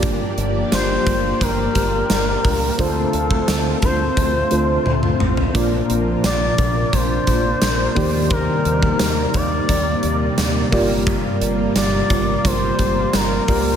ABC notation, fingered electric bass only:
X:1
M:4/4
L:1/8
Q:1/4=87
K:Gdor
V:1 name="Fingered electric bass" clef=bass
G,,, G,,, G,,, G,,, G,,, G,,, G,,, _D,, | D,, D,, D,, D,, D,, D,, D,, A,,, | B,,, B,,, B,,, B,,, B,,, B,,, B,,, _E,,- | _E,, E,, E,, E,, E,, E,, E,, G,,,- |
G,,, G,,, G,,, G,,, G,,, G,,, G,,, _D,, |]